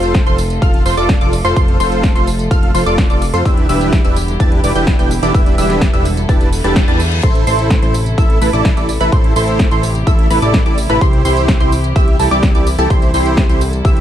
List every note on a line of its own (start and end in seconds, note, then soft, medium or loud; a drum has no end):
0.00 0.24 F1 loud
0.00 3.42 C3 medium
0.00 3.42 F3 medium
0.00 3.42 A3 medium
0.00 0.24 F4 medium
0.00 3.42 F4 medium
0.00 0.24 A4 medium
0.00 3.42 A4 medium
0.00 0.24 C5 medium
0.00 0.24 C6 medium
0.00 closed hi-hat soft
0.00 tambourine soft
0.14 kick loud
0.14 snare loud
0.14 closed hi-hat medium
0.14 tambourine soft
0.27 0.60 F1 loud
0.27 0.39 F4 medium
0.27 0.39 A4 medium
0.27 0.39 C5 medium
0.27 0.39 C6 medium
0.27 closed hi-hat soft
0.27 tambourine soft
0.38 open hi-hat medium
0.38 tambourine medium
0.50 closed hi-hat soft
0.50 tambourine soft
0.62 0.83 F1 loud
0.62 0.82 F4 loud
0.62 0.82 A4 medium
0.62 0.82 F5 loud
0.62 0.82 F6 loud
0.62 kick loud
0.62 closed hi-hat medium
0.62 tambourine soft
0.74 closed hi-hat soft
0.86 0.95 F1 loud
0.86 0.95 F4 medium
0.86 0.95 A4 medium
0.86 0.95 C5 medium
0.86 0.95 C6 medium
0.86 open hi-hat loud
0.86 tambourine medium
0.97 1.19 F1 medium
0.97 1.18 F4 medium
0.97 1.18 A4 medium
0.97 1.18 D5 loud
0.97 1.18 D6 loud
0.97 closed hi-hat soft
0.97 tambourine soft
1.09 kick loud
1.09 snare loud
1.09 closed hi-hat medium
1.09 tambourine soft
1.21 1.42 F1 loud
1.21 1.34 F4 medium
1.21 1.34 A4 medium
1.21 1.34 D5 medium
1.21 1.34 D6 medium
1.21 closed hi-hat soft
1.21 tambourine soft
1.33 open hi-hat loud
1.33 tambourine medium
1.45 1.54 F1 medium
1.45 1.55 F4 medium
1.45 1.55 A4 medium
1.45 1.55 C5 loud
1.45 1.55 C6 loud
1.45 closed hi-hat soft
1.45 tambourine soft
1.56 1.78 F1 loud
1.56 1.77 F4 medium
1.56 1.77 A4 medium
1.56 1.77 C5 medium
1.56 1.77 C6 loud
1.56 kick loud
1.56 closed hi-hat medium
1.56 tambourine soft
1.68 closed hi-hat soft
1.80 2.13 F1 loud
1.80 2.13 F4 medium
1.80 2.13 A4 medium
1.80 2.13 C5 medium
1.80 2.13 C6 medium
1.80 open hi-hat loud
1.80 tambourine medium
1.92 closed hi-hat soft
1.92 tambourine soft
2.03 kick loud
2.03 snare loud
2.03 closed hi-hat medium
2.03 tambourine soft
2.15 2.49 F1 loud
2.15 2.28 F4 medium
2.15 2.28 A4 medium
2.15 2.28 C5 medium
2.15 2.28 C6 medium
2.15 closed hi-hat soft
2.15 tambourine soft
2.27 open hi-hat medium
2.27 tambourine medium
2.39 closed hi-hat soft
2.39 tambourine soft
2.51 2.72 F1 loud
2.51 2.71 F4 loud
2.51 2.71 A4 medium
2.51 2.71 F5 loud
2.51 2.71 F6 loud
2.51 kick loud
2.51 closed hi-hat medium
2.51 tambourine soft
2.63 closed hi-hat soft
2.75 2.84 F1 loud
2.75 2.84 F4 medium
2.75 2.84 A4 medium
2.75 2.84 C5 medium
2.75 2.84 C6 medium
2.75 open hi-hat loud
2.75 tambourine medium
2.86 3.08 F1 loud
2.86 3.07 F4 medium
2.86 3.07 A4 medium
2.86 3.07 D5 medium
2.86 3.07 D6 loud
2.86 closed hi-hat soft
2.86 tambourine soft
2.98 kick loud
2.98 snare loud
2.98 closed hi-hat medium
2.98 tambourine soft
3.10 3.31 F1 loud
3.10 3.23 F4 medium
3.10 3.23 A4 medium
3.10 3.23 D5 medium
3.10 3.23 D6 medium
3.10 closed hi-hat soft
3.10 tambourine soft
3.22 open hi-hat medium
3.22 tambourine medium
3.34 3.43 F2 loud
3.34 3.44 F4 medium
3.34 3.44 A4 medium
3.34 3.44 C5 loud
3.34 3.44 C6 loud
3.34 closed hi-hat soft
3.34 tambourine soft
3.45 3.67 E1 loud
3.45 7.20 D3 medium
3.45 7.20 G3 medium
3.45 7.20 B3 medium
3.45 3.66 D4 medium
3.45 14.01 E4 medium
3.45 5.33 G4 medium
3.45 3.66 G4 medium
3.45 3.66 B4 medium
3.45 3.66 E6 medium
3.45 kick loud
3.45 closed hi-hat medium
3.45 tambourine soft
3.57 closed hi-hat soft
3.69 4.02 E1 loud
3.69 4.02 D4 medium
3.69 4.02 E4 medium
3.69 4.02 G4 medium
3.69 4.02 B4 medium
3.69 4.02 E5 medium
3.69 4.02 E6 medium
3.69 open hi-hat loud
3.69 tambourine medium
3.81 closed hi-hat soft
3.81 tambourine soft
3.93 kick loud
3.93 snare loud
3.93 closed hi-hat medium
3.93 tambourine soft
4.04 4.38 E1 loud
4.04 4.17 D4 medium
4.04 4.17 E4 medium
4.04 4.17 G4 medium
4.04 4.17 B4 medium
4.04 4.17 E5 medium
4.04 4.17 E6 medium
4.04 closed hi-hat soft
4.04 tambourine soft
4.16 open hi-hat medium
4.16 tambourine medium
4.28 closed hi-hat soft
4.28 tambourine soft
4.40 4.61 E1 loud
4.40 4.60 D4 loud
4.40 4.60 E4 loud
4.40 4.60 G4 medium
4.40 4.60 B4 medium
4.40 4.60 A5 loud
4.40 4.60 A6 loud
4.40 kick loud
4.40 closed hi-hat medium
4.40 tambourine soft
4.52 closed hi-hat soft
4.64 4.73 E1 loud
4.64 4.73 D4 medium
4.64 4.73 E4 medium
4.64 4.73 G4 medium
4.64 4.73 B4 medium
4.64 4.73 D5 medium
4.64 4.73 D6 medium
4.64 open hi-hat loud
4.64 tambourine medium
4.75 4.97 E1 loud
4.75 4.96 D4 medium
4.75 4.96 E4 medium
4.75 4.96 G4 medium
4.75 4.96 B4 medium
4.75 4.96 G5 medium
4.75 4.96 G6 medium
4.75 closed hi-hat soft
4.75 tambourine soft
4.87 kick loud
4.87 snare loud
4.87 closed hi-hat medium
4.87 tambourine soft
4.99 5.20 E1 loud
4.99 5.12 D4 medium
4.99 5.12 E4 medium
4.99 5.12 G4 medium
4.99 5.12 B4 medium
4.99 5.12 G5 medium
4.99 5.12 G6 medium
4.99 closed hi-hat soft
4.99 tambourine soft
5.11 open hi-hat medium
5.11 tambourine medium
5.23 5.32 E1 medium
5.23 5.33 D4 medium
5.23 5.33 E4 medium
5.23 5.33 G4 medium
5.23 5.33 B4 medium
5.23 5.33 D5 loud
5.23 5.33 D6 loud
5.23 closed hi-hat soft
5.23 tambourine soft
5.34 5.56 E1 loud
5.34 5.55 D4 medium
5.34 5.55 E4 medium
5.34 5.55 G4 medium
5.34 7.22 A4 medium
5.34 5.55 B4 medium
5.34 5.55 E5 medium
5.34 5.55 E6 medium
5.34 kick loud
5.34 closed hi-hat medium
5.34 tambourine soft
5.46 closed hi-hat soft
5.46 tambourine soft
5.58 5.91 E1 loud
5.58 5.91 D4 medium
5.58 5.91 E4 medium
5.58 5.91 G4 medium
5.58 5.91 B4 medium
5.58 5.91 E5 medium
5.58 5.91 E6 medium
5.58 open hi-hat loud
5.58 tambourine medium
5.70 snare soft
5.70 closed hi-hat soft
5.70 tambourine soft
5.81 kick loud
5.81 snare loud
5.81 closed hi-hat medium
5.81 tambourine soft
5.93 6.27 E1 loud
5.93 6.06 D4 medium
5.93 6.06 E4 medium
5.93 6.06 G4 medium
5.93 6.06 B4 medium
5.93 6.06 E5 medium
5.93 6.06 E6 medium
5.93 closed hi-hat soft
5.93 tambourine soft
6.05 open hi-hat medium
6.05 tambourine medium
6.17 closed hi-hat soft
6.17 tambourine soft
6.29 6.62 E1 loud
6.29 6.49 D4 loud
6.29 6.49 E4 loud
6.29 6.49 G4 medium
6.29 6.49 B4 medium
6.29 6.49 A5 loud
6.29 6.49 A6 loud
6.29 kick loud
6.29 closed hi-hat medium
6.29 tambourine soft
6.29 reverse cymbal medium
6.41 closed hi-hat soft
6.41 tambourine soft
6.53 open hi-hat loud
6.53 tambourine medium
6.64 6.86 E1 loud
6.64 6.85 D4 medium
6.64 6.85 E4 medium
6.64 6.85 G4 medium
6.64 6.85 B4 medium
6.64 6.85 A5 loud
6.64 6.85 A6 loud
6.64 closed hi-hat soft
6.64 tambourine soft
6.76 kick loud
6.76 snare loud
6.76 closed hi-hat medium
6.76 tambourine soft
6.88 7.21 E2 loud
6.88 7.00 D4 loud
6.88 7.00 E4 medium
6.88 7.00 G4 medium
6.88 7.00 B4 medium
6.88 7.00 A5 loud
6.88 7.00 A6 loud
6.88 closed hi-hat soft
6.88 tambourine soft
7.00 open hi-hat medium
7.00 tambourine medium
7.12 closed hi-hat soft
7.12 tambourine soft
7.23 7.45 A1 medium
7.23 14.01 C3 medium
7.23 14.01 E3 medium
7.23 10.98 A3 medium
7.23 7.44 E4 medium
7.23 9.10 A4 medium
7.23 7.44 A4 medium
7.23 7.44 C5 loud
7.23 7.44 C6 loud
7.23 kick loud
7.23 closed hi-hat medium
7.23 tambourine soft
7.23 crash medium
7.35 closed hi-hat soft
7.47 7.80 A1 loud
7.47 7.80 E4 medium
7.47 7.80 A4 medium
7.47 7.80 C5 medium
7.47 7.80 C6 medium
7.47 open hi-hat loud
7.47 tambourine medium
7.59 closed hi-hat soft
7.59 tambourine soft
7.70 kick loud
7.70 snare loud
7.70 closed hi-hat medium
7.70 tambourine soft
7.82 8.16 A1 loud
7.82 7.95 E4 medium
7.82 7.95 A4 medium
7.82 7.95 C5 medium
7.82 7.95 C6 medium
7.82 closed hi-hat soft
7.82 tambourine soft
7.94 open hi-hat loud
7.94 tambourine medium
8.06 closed hi-hat soft
8.06 tambourine soft
8.18 8.39 A1 loud
8.18 8.38 E4 loud
8.18 8.38 A4 medium
8.18 8.38 E5 loud
8.18 8.38 E6 loud
8.18 kick loud
8.18 closed hi-hat medium
8.18 tambourine soft
8.30 closed hi-hat soft
8.41 8.51 A1 loud
8.41 8.51 E4 medium
8.41 8.51 A4 medium
8.41 8.51 B4 medium
8.41 8.50 B5 medium
8.41 open hi-hat loud
8.41 tambourine medium
8.53 8.75 A1 medium
8.53 8.74 E4 medium
8.53 8.74 A4 medium
8.53 8.74 D5 loud
8.53 8.74 D6 loud
8.53 closed hi-hat soft
8.53 tambourine soft
8.65 kick loud
8.65 snare loud
8.65 closed hi-hat medium
8.65 tambourine soft
8.77 8.98 A1 loud
8.77 8.89 E4 medium
8.77 8.89 A4 medium
8.77 8.89 D5 medium
8.77 8.89 D6 medium
8.77 closed hi-hat soft
8.77 tambourine soft
8.89 open hi-hat medium
8.89 tambourine medium
9.01 9.10 A1 loud
9.01 9.11 E4 medium
9.01 9.11 A4 medium
9.01 9.11 B4 loud
9.01 9.11 B5 loud
9.01 closed hi-hat soft
9.01 tambourine soft
9.12 9.34 A1 medium
9.12 9.33 E4 medium
9.12 10.99 G4 medium
9.12 9.33 A4 medium
9.12 9.33 C6 loud
9.12 kick loud
9.12 closed hi-hat medium
9.12 tambourine soft
9.24 closed hi-hat soft
9.36 9.69 A1 loud
9.36 9.69 E4 medium
9.36 9.69 A4 medium
9.36 9.69 C5 medium
9.36 9.69 C6 medium
9.36 open hi-hat loud
9.36 tambourine medium
9.48 closed hi-hat soft
9.48 tambourine soft
9.59 kick loud
9.59 snare loud
9.59 closed hi-hat medium
9.59 tambourine soft
9.71 10.05 A1 loud
9.71 9.84 E4 medium
9.71 9.84 A4 medium
9.71 9.84 C5 medium
9.71 9.84 C6 medium
9.71 closed hi-hat soft
9.71 tambourine soft
9.83 open hi-hat loud
9.83 tambourine medium
9.95 closed hi-hat soft
9.95 tambourine soft
10.07 10.28 A1 loud
10.07 10.27 E4 loud
10.07 10.27 A4 medium
10.07 10.27 E5 loud
10.07 10.27 E6 loud
10.07 kick loud
10.07 closed hi-hat medium
10.07 tambourine soft
10.19 closed hi-hat soft
10.30 10.40 A1 loud
10.30 10.39 E4 medium
10.30 10.39 A4 medium
10.30 10.39 B4 medium
10.30 10.39 B5 medium
10.30 open hi-hat loud
10.30 tambourine medium
10.42 10.64 A1 loud
10.42 10.63 E4 medium
10.42 10.63 A4 medium
10.42 10.63 D5 medium
10.42 10.63 D6 loud
10.42 closed hi-hat soft
10.42 tambourine soft
10.54 kick loud
10.54 snare loud
10.54 closed hi-hat medium
10.54 tambourine soft
10.66 10.87 A1 loud
10.66 10.78 E4 medium
10.66 10.78 A4 medium
10.66 10.78 D5 medium
10.66 10.78 D6 medium
10.66 closed hi-hat soft
10.66 tambourine soft
10.78 open hi-hat loud
10.78 tambourine medium
10.90 10.99 A1 loud
10.90 11.00 E4 medium
10.90 11.00 A4 medium
10.90 11.00 B4 loud
10.90 11.00 B5 loud
10.90 closed hi-hat soft
10.90 tambourine soft
11.01 11.23 C2 loud
11.01 14.01 G3 medium
11.01 12.88 G4 medium
11.01 11.22 G4 medium
11.01 11.22 C6 loud
11.01 kick loud
11.01 closed hi-hat medium
11.01 tambourine soft
11.13 closed hi-hat soft
11.25 11.58 C2 loud
11.25 11.58 E4 medium
11.25 11.58 G4 medium
11.25 11.58 C5 medium
11.25 11.58 C6 medium
11.25 open hi-hat loud
11.25 tambourine medium
11.37 closed hi-hat soft
11.37 tambourine soft
11.48 kick loud
11.48 snare loud
11.48 closed hi-hat medium
11.48 tambourine soft
11.60 11.93 C2 loud
11.60 11.73 E4 medium
11.60 11.73 G4 medium
11.60 11.73 C5 medium
11.60 11.73 C6 medium
11.60 closed hi-hat soft
11.60 tambourine soft
11.72 open hi-hat loud
11.72 tambourine medium
11.84 closed hi-hat soft
11.84 tambourine soft
11.96 12.17 C2 loud
11.96 12.16 E4 loud
11.96 12.16 G4 medium
11.96 12.16 E5 loud
11.96 12.16 E6 loud
11.96 kick loud
11.96 closed hi-hat medium
11.96 tambourine soft
12.08 closed hi-hat soft
12.19 12.29 C2 loud
12.19 12.28 E4 medium
12.19 12.28 G4 medium
12.19 12.28 A4 medium
12.19 12.28 A5 medium
12.19 open hi-hat loud
12.19 tambourine medium
12.31 12.53 C2 medium
12.31 12.52 E4 medium
12.31 12.52 G4 medium
12.31 12.52 D5 loud
12.31 12.52 D6 loud
12.31 closed hi-hat soft
12.31 tambourine soft
12.43 kick loud
12.43 snare loud
12.43 closed hi-hat medium
12.43 tambourine soft
12.55 12.76 C2 loud
12.55 12.67 E4 medium
12.55 12.67 G4 medium
12.55 12.67 D5 medium
12.55 12.67 D6 medium
12.55 closed hi-hat soft
12.55 tambourine soft
12.67 open hi-hat loud
12.67 tambourine medium
12.78 12.88 C2 loud
12.78 12.89 E4 medium
12.78 12.89 G4 medium
12.78 12.89 A4 loud
12.78 12.89 A5 loud
12.78 closed hi-hat soft
12.78 tambourine soft
12.90 13.12 C2 loud
12.90 13.11 E4 medium
12.90 13.11 G4 medium
12.90 14.01 A4 medium
12.90 13.11 C5 loud
12.90 13.11 C6 loud
12.90 kick loud
12.90 closed hi-hat medium
12.90 tambourine soft
13.02 closed hi-hat soft
13.02 tambourine soft
13.14 13.47 C2 loud
13.14 13.47 E4 medium
13.14 13.47 G4 medium
13.14 13.47 C5 medium
13.14 13.47 C6 medium
13.14 open hi-hat loud
13.14 tambourine medium
13.26 closed hi-hat soft
13.26 tambourine soft
13.37 kick loud
13.37 snare loud
13.37 closed hi-hat medium
13.37 tambourine soft
13.49 13.82 C2 loud
13.49 13.62 E4 medium
13.49 13.62 G4 medium
13.49 13.62 C5 medium
13.49 13.62 C6 medium
13.49 closed hi-hat soft
13.49 tambourine soft
13.61 open hi-hat medium
13.61 tambourine medium
13.73 closed hi-hat soft
13.73 tambourine soft
13.85 14.01 C2 loud
13.85 14.01 E4 loud
13.85 14.01 G4 medium
13.85 14.01 E5 loud
13.85 14.01 E6 loud
13.85 kick loud
13.85 closed hi-hat medium
13.85 tambourine soft
13.97 closed hi-hat soft